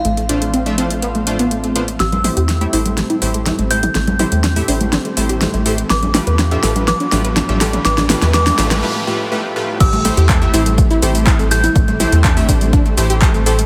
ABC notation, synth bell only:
X:1
M:4/4
L:1/8
Q:1/4=123
K:Am
V:1 name="Synth bell"
f8 | e'4 z3 g'- | g'8 | d'4 d'4 |
d'2 d'2 z4 | e'4 z3 g'- | g'8 |]